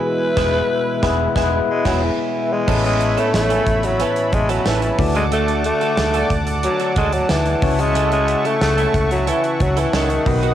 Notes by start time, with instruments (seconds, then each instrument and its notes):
Already playing: analog synth pad B2 E3 G#3 E4, tine electric piano G#3 B3 E4 G#4, alto saxophone B4
0.36 fingered electric bass E1, tine electric piano G#3 B3 E4 B4, clean electric guitar B3 E4 G#4, kick, snare, crash
1.02 fingered electric bass E1, tine electric piano G#3 B3 E4, clean electric guitar B3 E4 G#4, kick, snare
1.10 tine electric piano B4
1.35 fingered electric bass E1, tine electric piano G#3 B3 E4, clean electric guitar B3 E4 G#4, kick, snare
1.43 tine electric piano B4
1.70 alto saxophone G#3
1.85 fingered electric bass E1, alto saxophone F#3, clean electric guitar B3 E4 G#4, kick, snare, crash
2.03 alto saxophone E3
2.53 alto saxophone G#3
2.67 fingered electric bass A1, tine electric piano A2 B3 C#4 E4 A#4 A5, clean electric guitar B3 C#4 A4, analog synth pad C#5 E5 A5 B5, kick, crash
2.75 tine electric piano B4
2.84 alto saxophone G#3, closed hi-hat
3.01 closed hi-hat
3.17 alto saxophone A3, clean electric guitar B3 C#4 A4, closed hi-hat
3.34 fingered electric bass A1, alto saxophone A3, snare, tambourine
3.50 clean electric guitar B3 C#4 A4, closed hi-hat
3.67 fingered electric bass A1, muted clean electric guitar stroke, kick, closed hi-hat
3.83 alto saxophone F#3, muted clean electric guitar stroke, closed hi-hat
4.00 alto saxophone E3, clean electric guitar B3 C#4 A4, closed hi-hat
4.16 muted clean electric guitar stroke, closed hi-hat
4.33 fingered electric bass A1, alto saxophone G#3, muted clean electric guitar stroke, kick, closed hi-hat
4.49 alto saxophone F#3, clean electric guitar B3 C#4 A4, closed hi-hat
4.66 fingered electric bass A1, alto saxophone E3, clean electric guitar B3 C#4 A4, snare, tambourine
4.82 muted clean electric guitar stroke, closed hi-hat
4.98 fingered electric bass D2, tine electric piano D3 A3 D4 F#4 A4 D5, analog synth pad D5 F#5 D6, muted clean electric guitar stroke, kick, open hi-hat
5.15 alto saxophone G#3, clean electric guitar D4 F#4 A4, closed hi-hat
5.31 alto saxophone A3, clean electric guitar D4 F#4 A4, closed hi-hat
5.48 closed hi-hat
5.64 alto saxophone A3, muted clean electric guitar stroke, closed hi-hat
5.81 clean electric guitar D4 F#4 A4, closed hi-hat
5.97 fingered electric bass D2, snare, tambourine
6.14 clean electric guitar D4 F#4 A4, closed hi-hat
6.30 fingered electric bass D2, muted clean electric guitar stroke, kick, closed hi-hat
6.47 muted clean electric guitar stroke, closed hi-hat
6.63 alto saxophone F#3, muted clean electric guitar stroke, closed hi-hat
6.80 clean electric guitar D4 F#4 A4, closed hi-hat
6.96 fingered electric bass D2, alto saxophone G#3, clean electric guitar D4 F#4 A4, kick, closed hi-hat
7.13 alto saxophone F#3, muted clean electric guitar stroke, closed hi-hat
7.29 fingered electric bass D2, alto saxophone E3, muted clean electric guitar stroke, snare, tambourine
7.46 muted clean electric guitar stroke, closed hi-hat
7.62 fingered electric bass C#2, tine electric piano C#3 C#4 E4 F#4 C#5 A5, analog synth pad E5 F#5 C#6, kick, open hi-hat
7.79 alto saxophone G#3, muted clean electric guitar stroke, closed hi-hat
7.95 clean electric guitar C#4 E4 A4, closed hi-hat
8.12 alto saxophone G#3, closed hi-hat
8.28 muted clean electric guitar stroke, closed hi-hat
8.44 alto saxophone A3, clean electric guitar C#4 E4 A4, closed hi-hat
8.61 fingered electric bass C#2, alto saxophone A3, muted clean electric guitar stroke, snare, tambourine
8.77 clean electric guitar C#4 E4 A4, closed hi-hat
8.94 fingered electric bass C#2, muted clean electric guitar stroke, kick, closed hi-hat
9.11 alto saxophone F#3, muted clean electric guitar stroke, closed hi-hat
9.27 alto saxophone E3, clean electric guitar C#4 E4 A4, closed hi-hat
9.44 closed hi-hat
9.60 fingered electric bass C#2, alto saxophone F#3, muted clean electric guitar stroke, kick, closed hi-hat
9.76 alto saxophone E3, clean electric guitar C#4 E4 A4, closed hi-hat
9.93 fingered electric bass C#2, alto saxophone D#3, clean electric guitar C#4 E4 A4, snare, tambourine
10.10 muted clean electric guitar stroke, closed hi-hat
10.25 fingered electric bass B1, tine electric piano B2 B3 D#4 F#4 B4 D#5, analog synth pad B4 D#5 D#6, muted clean electric guitar stroke, kick, open hi-hat
10.43 clean electric guitar D#4 F#4 B4, closed hi-hat